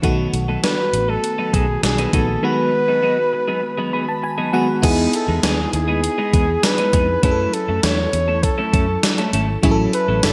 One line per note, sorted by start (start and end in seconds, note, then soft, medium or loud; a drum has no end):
0.02 0.26 B1 loud
0.02 2.09 D#3 medium
0.02 0.31 F#3 medium
0.02 2.09 A3 medium
0.02 0.31 B3 medium
0.02 2.10 B3 medium
0.02 0.31 D#4 medium
0.02 2.10 F#4 medium
0.02 0.31 A4 medium
0.02 kick loud
0.02 closed hi-hat medium
0.33 0.56 B1 medium
0.33 muted clean electric guitar stroke soft
0.33 closed hi-hat medium
0.48 0.60 F#3 soft
0.48 0.60 B3 medium
0.48 0.60 D#4 medium
0.48 0.60 A4 medium
0.63 0.78 F#3 medium
0.63 0.78 B3 medium
0.63 0.77 D#4 medium
0.63 0.77 A4 medium
0.63 1.11 B4 loud
0.63 snare loud
0.63 closed hi-hat medium
0.78 muted clean electric guitar stroke soft
0.93 1.16 A1 medium
0.93 muted clean electric guitar stroke soft
0.93 closed hi-hat medium
1.08 1.20 F#3 soft
1.08 1.20 B3 medium
1.08 1.20 D#4 medium
1.08 1.20 A4 medium
1.08 1.56 A4 loud
1.23 muted clean electric guitar stroke soft
1.23 closed hi-hat medium
1.38 1.52 F#3 medium
1.38 1.52 B3 medium
1.38 1.53 D#4 medium
1.38 1.53 A4 medium
1.53 1.76 B1 medium
1.53 1.65 F#3 medium
1.53 1.65 B3 medium
1.53 1.65 D#4 medium
1.53 1.84 G#4 medium
1.53 1.65 A4 medium
1.53 kick medium
1.53 closed hi-hat medium
1.68 muted clean electric guitar stroke soft
1.83 2.06 B1 medium
1.83 2.16 G#4 medium
1.83 muted clean electric guitar stroke soft
1.83 snare loud
1.83 closed hi-hat medium
1.98 2.10 F#3 soft
1.98 2.10 B3 medium
1.98 2.10 D#4 medium
1.98 2.10 A4 medium
1.98 closed hi-hat medium
2.13 2.36 A#1 loud
2.13 2.41 D#3 soft
2.13 2.28 F#3 medium
2.13 2.43 A3 soft
2.13 2.27 B3 medium
2.13 2.43 B3 soft
2.13 2.27 D#4 medium
2.13 2.43 F#4 medium
2.13 2.27 A4 medium
2.13 2.46 A4 medium
2.13 kick medium
2.13 closed hi-hat medium
2.28 muted clean electric guitar stroke soft
2.42 4.49 D#3 medium
2.42 2.71 F#3 medium
2.42 4.49 G#3 medium
2.42 2.71 B3 medium
2.42 4.50 B3 medium
2.42 2.71 D#4 medium
2.42 4.50 F#4 medium
2.42 2.71 G#4 medium
2.42 4.24 B4 loud
2.73 muted clean electric guitar stroke soft
2.88 3.00 F#3 soft
2.88 3.00 B3 medium
2.88 3.00 D#4 medium
2.88 3.00 G#4 medium
3.02 3.18 F#3 medium
3.02 3.18 B3 medium
3.02 3.18 D#4 medium
3.02 3.17 G#4 loud
3.18 muted clean electric guitar stroke soft
3.33 muted clean electric guitar stroke soft
3.48 3.60 F#3 soft
3.48 3.60 B3 medium
3.48 3.60 D#4 medium
3.48 3.60 G#4 medium
3.63 muted clean electric guitar stroke soft
3.78 3.91 F#3 medium
3.78 3.92 B3 medium
3.78 3.92 D#4 medium
3.78 3.93 G#4 medium
3.93 4.05 F#3 medium
3.93 4.05 B3 medium
3.93 4.05 D#4 medium
3.93 4.05 G#4 medium
3.93 4.07 B5 medium
4.08 4.22 A5 medium
4.08 muted clean electric guitar stroke soft
4.23 4.51 G#5 medium
4.23 muted clean electric guitar stroke soft
4.38 4.50 F#3 soft
4.38 4.50 B3 medium
4.38 4.50 D#4 medium
4.38 4.50 G#4 medium
4.53 4.83 D#3 medium
4.53 4.68 F#3 medium
4.53 4.83 G#3 medium
4.53 4.68 B3 medium
4.53 4.82 B3 medium
4.53 4.67 D#4 medium
4.53 4.84 F#4 medium
4.53 4.67 G#4 medium
4.53 4.81 F#5 medium
4.68 muted clean electric guitar stroke medium
4.82 5.06 E2 loud
4.82 5.11 G#3 medium
4.82 7.19 B3 medium
4.82 5.11 B3 medium
4.82 5.11 D#4 medium
4.82 7.20 D#4 medium
4.82 7.19 E4 medium
4.82 5.11 G#4 medium
4.82 7.20 G#4 medium
4.82 kick loud
4.82 closed hi-hat medium
4.82 crash loud
5.13 5.37 A4 medium
5.13 muted clean electric guitar stroke soft
5.13 closed hi-hat medium
5.28 5.40 E2 loud
5.28 5.40 G#3 medium
5.28 5.40 B3 medium
5.28 5.40 D#4 medium
5.28 5.40 G#4 medium
5.37 5.46 A4 medium
5.43 5.66 D#2 medium
5.43 5.58 G#3 medium
5.43 5.57 B3 medium
5.43 5.57 D#4 medium
5.43 5.57 G#4 medium
5.43 5.74 G#4 medium
5.43 snare loud
5.43 closed hi-hat medium
5.43 tambourine medium
5.58 muted clean electric guitar stroke medium
5.73 6.07 D#2 medium
5.73 6.66 G#4 loud
5.73 muted clean electric guitar stroke soft
5.73 closed hi-hat medium
5.88 6.00 G#3 medium
5.88 6.00 B3 medium
5.88 6.00 D#4 medium
5.88 6.00 G#4 medium
6.03 muted clean electric guitar stroke soft
6.03 closed hi-hat medium
6.18 6.32 G#3 medium
6.18 6.32 B3 medium
6.18 6.33 D#4 medium
6.18 6.33 G#4 medium
6.33 6.56 E2 medium
6.33 6.45 G#3 medium
6.33 6.45 B3 medium
6.33 6.45 D#4 medium
6.33 6.45 G#4 medium
6.33 kick medium
6.33 closed hi-hat medium
6.48 muted clean electric guitar stroke medium
6.63 7.23 B4 loud
6.63 muted clean electric guitar stroke soft
6.63 snare loud
6.63 closed hi-hat medium
6.63 tambourine medium
6.78 6.90 G#3 medium
6.78 6.90 B3 soft
6.78 6.90 D#4 medium
6.78 6.90 G#4 medium
6.78 closed hi-hat medium
6.93 7.16 F2 medium
6.93 7.08 G#3 medium
6.93 7.08 B3 medium
6.93 7.07 D#4 medium
6.93 7.07 G#4 medium
6.93 kick medium
6.93 closed hi-hat medium
7.08 muted clean electric guitar stroke soft
7.23 7.46 F#2 loud
7.23 9.59 F#3 medium
7.23 7.51 A3 medium
7.23 7.51 C#4 medium
7.23 9.59 C#4 medium
7.23 7.51 E4 medium
7.23 9.60 E4 medium
7.23 7.31 G#4 medium
7.23 7.51 A4 medium
7.23 7.56 B4 loud
7.23 kick loud
7.23 closed hi-hat medium
7.31 9.63 A4 medium
7.53 7.86 A4 medium
7.53 muted clean electric guitar stroke soft
7.53 closed hi-hat medium
7.68 7.80 F#2 medium
7.68 7.81 A3 medium
7.68 7.80 C#4 medium
7.68 7.80 E4 medium
7.68 7.80 A4 medium
7.83 8.06 E2 loud
7.83 7.98 A3 medium
7.83 7.98 C#4 medium
7.83 7.98 E4 medium
7.83 7.97 A4 loud
7.83 8.45 C#5 loud
7.83 snare loud
7.83 closed hi-hat medium
7.83 tambourine medium
7.98 muted clean electric guitar stroke soft
8.13 8.47 E2 loud
8.13 muted clean electric guitar stroke soft
8.13 closed hi-hat medium
8.28 8.40 A3 soft
8.28 8.40 C#4 medium
8.28 8.40 E4 medium
8.28 8.40 A4 medium
8.43 9.04 A4 medium
8.43 muted clean electric guitar stroke soft
8.43 kick medium
8.43 closed hi-hat medium
8.58 8.71 A3 medium
8.58 8.72 C#4 medium
8.58 8.72 E4 medium
8.58 8.73 A4 medium
8.73 8.96 F#2 medium
8.73 8.85 A3 medium
8.73 8.85 C#4 medium
8.73 8.85 E4 medium
8.73 8.85 A4 medium
8.73 kick loud
8.73 closed hi-hat medium
8.88 muted clean electric guitar stroke medium
9.03 muted clean electric guitar stroke soft
9.03 snare loud
9.03 closed hi-hat medium
9.03 tambourine medium
9.18 9.30 A3 soft
9.18 9.30 C#4 medium
9.18 9.30 E4 medium
9.18 9.30 A4 medium
9.18 closed hi-hat medium
9.33 9.56 G#1 medium
9.33 9.48 A3 medium
9.33 9.48 C#4 medium
9.33 9.48 E4 medium
9.33 9.47 A4 medium
9.33 closed hi-hat medium
9.48 muted clean electric guitar stroke soft
9.62 9.86 A1 loud
9.62 10.33 F#3 medium
9.62 9.91 F#3 medium
9.62 10.33 C#4 medium
9.62 9.91 C#4 medium
9.62 9.91 E4 loud
9.62 10.33 E4 medium
9.62 9.71 G#4 medium
9.62 9.91 A4 loud
9.62 kick loud
9.62 closed hi-hat medium
9.71 10.33 A4 medium
9.93 10.22 B4 medium
9.93 muted clean electric guitar stroke soft
9.93 closed hi-hat medium
10.08 10.20 A1 loud
10.08 10.20 F#3 medium
10.08 10.20 C#4 medium
10.08 10.20 E4 medium
10.08 10.20 A4 medium
10.23 10.33 F#1 medium
10.23 10.33 F#3 medium
10.23 10.33 C#4 medium
10.23 10.33 E4 loud
10.23 10.33 A4 loud
10.23 10.33 A4 medium
10.23 snare loud
10.23 closed hi-hat medium
10.23 tambourine medium